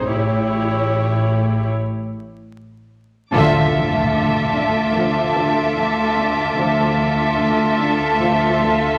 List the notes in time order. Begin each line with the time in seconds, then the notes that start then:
Already playing: D#5 D7
0.09 A1 A2 E4 G4 C#5
3.32 D2 D3 F3 F4 A4 E5 A5 D6, impact
3.73 D3
4.14 D3 D6
4.55 D4
4.95 D3 F3 F4
5.36 D3 A4 A5
5.77 D3
6.16 D4
6.57 D2 D3 F3 F4 A4 E5
6.98 D3
7.38 D3
7.79 D4
8.19 D3 F3 F4
8.60 D3